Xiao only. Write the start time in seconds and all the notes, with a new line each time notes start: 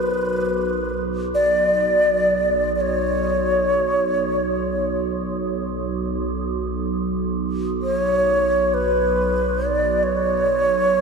Already playing: B4
1.35 D5
2.76 D5
2.81 C#5
7.82 C#5
8.74 B4
9.67 D5
10.03 C#5